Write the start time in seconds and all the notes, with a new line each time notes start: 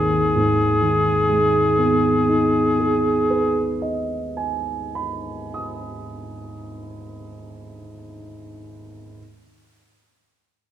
Already playing: G#1 D#2 G#4
0.35 G#2
0.82 D#3
1.29 G#3
1.78 B3
2.29 D#4
2.80 G#4
3.30 B4
3.82 D#5
4.37 G#5
4.95 B5
5.54 D#6